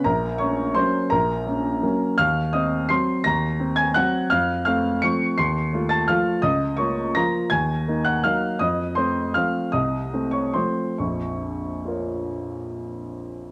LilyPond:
<<
  \new Staff \with { instrumentName = "Grand piano" } { \time 3/4 \key bes \minor \tempo 4 = 166 << { <bes' bes''>4 <des'' des'''>4 <c'' c'''>4 | <bes' bes''>2. | <f'' f'''>4 <ees'' ees'''>4 <c''' c''''>4 | <bes'' bes'''>4. <aes'' aes'''>8 <ges'' ges'''>4 |
<f'' f'''>4 <f'' f'''>4 <des''' des''''>4 | <c''' c''''>4. <a'' a'''>8 <f'' f'''>4 | <ees'' ees'''>4 <des'' des'''>4 <bes'' bes'''>4 | <aes'' aes'''>4. <ges'' ges'''>8 <f'' f'''>4 |
<ees'' ees'''>4 <c'' c'''>4 <f'' f'''>4 | <ees'' ees'''>4. <des'' des'''>8 <c'' c'''>4 | des'''2.~ | des'''2. | } \\ { r2. | r2. | r2. | r2. |
r2. | r2. | r2. | r2. |
r2. | r2. | r2 <f' bes' des''>4~ | <f' bes' des''>2. | } >> }
  \new Staff \with { instrumentName = "Grand piano" } { \time 3/4 \key bes \minor bes,,4 <bes des'>4 <ges bes des'>4 | bes,,4 <bes des'>4 <ges bes des'>4 | ees,4 c'4 <ges c'>4 | ees,4 c'4 <ges c'>4 |
f,4 <a c'>4 <f a c'>4 | ees,4 <a f'>4 <f a f'>4 | des,4 <bes f'>4 <f bes f'>4 | ees,4 <bes ees'>4 <ges bes ees'>4 |
f,4 <a c'>4 <f a c'>4 | c,4 <a c'>4 <f a c'>4 | <bes,, f,>2.~ | <bes,, f,>2. | }
>>